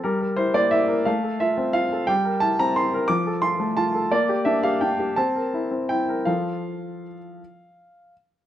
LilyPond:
\new Staff \with { instrumentName = "Grand piano" } { \time 6/8 \key f \major \tempo 4. = 58 << { bes'8 c''16 d''16 e''8 f''8 e''8 f''8 | g''8 a''16 bes''16 c'''8 d'''8 c'''8 a''8 | d''8 e''16 f''16 g''8 a''4 g''8 | f''2~ f''8 r8 | } \\ { g16 bes'16 e'16 bes16 e'16 bes'16 a16 a'16 f'16 c'16 f'16 a'16 | g16 bes'16 e'16 c'16 e'16 bes'16 f16 a'16 f'16 a16 f'16 a'16 | bes16 g'16 d'16 g'16 d'16 g'16 c'16 bes'16 e'16 c'16 e'16 bes'16 | <f f' a'>4. r4. | } >> }